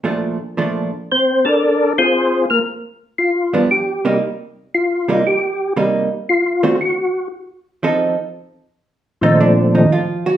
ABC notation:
X:1
M:4/4
L:1/8
Q:"Swing" 1/4=116
K:Fmix
V:1 name="Tonewheel organ"
z4 [Cc] [DABd]2 [CF_Ac]- | [CF_Ac] [B,B] z2 F2 G2 | z2 F2 G2 z2 | F2 ^F2 z4 |
[K:Bb] z3 [B,,F,A,CD]3 z2 |]
V:2 name="Hollow-body jazz guitar"
[B,,F,A,D] z [B,,F,A,D] z4 z | z4 z [G,,F,=B,D] z [C,G,_B,E] | z3 [C,G,B,E] z2 [C,G,B,E] z | z [D,A,C^F] z4 [=F,CEA] z |
[K:Bb] z3 [E,E] [D,D] [E,E] [F,F] [_G,_G] |]